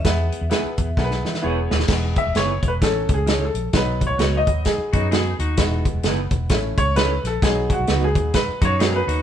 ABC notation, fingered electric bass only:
X:1
M:4/4
L:1/16
Q:"Swing" 1/4=130
K:E
V:1 name="Fingered electric bass" clef=bass
E,,2 z E,, z2 E,,2 B,,,2 E,2 E,,,2 D,,,2 | E,,,2 z E,,, F,,,2 E,,,2 A,,,2 C,,4 ^A,,,2 | B,,,3 B,,, C,,2 D,,2 z2 F,,4 D,,2 | E,,,2 z E,,, F,,,2 E,,,2 A,,,2 C,,4 ^A,,,2 |
B,,,2 z B,,, C,,2 D,,2 z2 F,,4 D,,2 |]